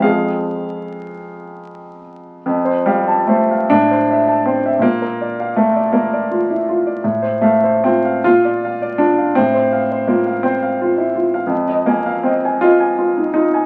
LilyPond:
\new Staff \with { instrumentName = "Grand piano" } { \time 6/8 \key f \minor \tempo 4. = 54 << { <f, f aes c'>2. | \key f \major f,16 c''16 f''16 a''16 c''16 f''16 a,16 c''16 e''16 a''16 c''16 e''16 | bes,16 bes'16 d''16 f''16 bes'16 d''16 bes'16 d''16 f'16 e'16 f'16 d''16 | a,16 c''16 f''16 c''16 f'16 f''16 bes,16 d''16 f''16 d''16 f'16 f''16 |
a,16 c''16 f''16 c''16 f'16 f''16 c''16 f''16 f'16 e'16 f'16 f''16 | \key f \minor f,16 ees''16 aes''16 f''16 ees''16 aes''16 ees''16 aes''16 f'16 ees'16 f'16 aes''16 | } \\ { <aes' f''>2~ <aes' f''>8 r8 | r8 g8 a8 d'4 c'8 | bes4 a8 bes4. | r8 a8 c'8 f'4 d'8 |
c'4 bes8 c'4. | r8 bes8 c'8 f'4 ees'8 | } >> }